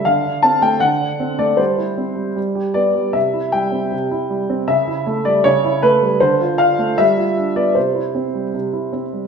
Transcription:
X:1
M:2/4
L:1/16
Q:1/4=78
K:C
V:1 name="Grand piano"
f2 a g ^f3 d | c4 z2 d2 | e2 g6 | e3 d ^c2 B2 |
c2 f2 e3 d | c6 z2 |]
V:2 name="Grand piano"
D, D C A, D, D C A, | G, E C G, G, G B, G, | C, E G, C C, E G, C | ^C, E A, G, C, E A, G, |
D, F D A, G, F D B, | C, E C G, C, E C G, |]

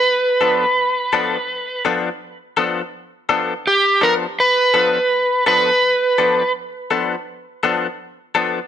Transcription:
X:1
M:4/4
L:1/8
Q:"Swing 16ths" 1/4=83
K:Gmix
V:1 name="Electric slide guitar"
B4- B z3 | z2 G _B =B3 B- | B2 z6 |]
V:2 name="Clean electric guitar"
z [F,B,DA] z [F,B,DA] z [F,B,DA] z [F,B,DA] | z [F,B,DA] z [F,B,DA] z [F,B,DA] z [F,B,DA] | z [F,B,DA] z [F,B,DA] z [F,B,DA] z [F,B,DA] |]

